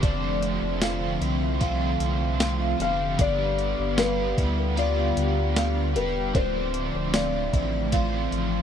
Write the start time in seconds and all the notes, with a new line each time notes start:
Already playing: D3
0.02 F1 F3 A3 C4 D4 A4 C5, kick, closed hi-hat
0.43 closed hi-hat
0.62 F1
0.80 A3 D4 F4, snare, closed hi-hat, tambourine
0.84 A4 C5
1.21 C2 E4, closed hi-hat
1.59 F3 A3 D4 F4 A4 C5, kick, closed hi-hat
2.00 C2, closed hi-hat
2.40 F4, snare, closed hi-hat, tambourine
2.78 F1 G4 A4 C5, closed hi-hat
2.82 D4 F5
3.18 G1 G3 B3 D4 G4 B4 D5, kick, closed hi-hat
3.59 closed hi-hat
3.79 G1
3.96 B3 D4 F4 G4 B4, snare, closed hi-hat, tambourine
4.01 B4
4.38 D2 E4, kick, closed hi-hat
4.75 G3 B3 D4 F4 G4 D5, closed hi-hat
4.79 B4
5.17 D2, closed hi-hat
5.56 F4, snare, closed hi-hat, tambourine
5.94 E1 G4 B4, closed hi-hat
5.99 D4
6.33 D1 D3 F3 A3 C4 D4 C5, kick, closed hi-hat
6.38 C4 F4 C5
6.74 closed hi-hat
6.94 D1
7.14 F4 D5, snare, closed hi-hat, tambourine
7.53 A1 E4, kick, closed hi-hat
7.92 D3 A3 C4 F4 C5, kick, closed hi-hat
8.32 A1, closed hi-hat